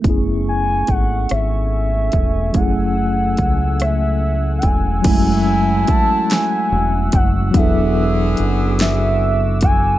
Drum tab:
CC |------|------|x-----|------|
HH |x-xx-x|x-xx-x|x-xx-x|x-xx-x|
SD |---r--|---r--|---o--|---o--|
BD |o-o--o|o-o--o|o-o--o|o----o|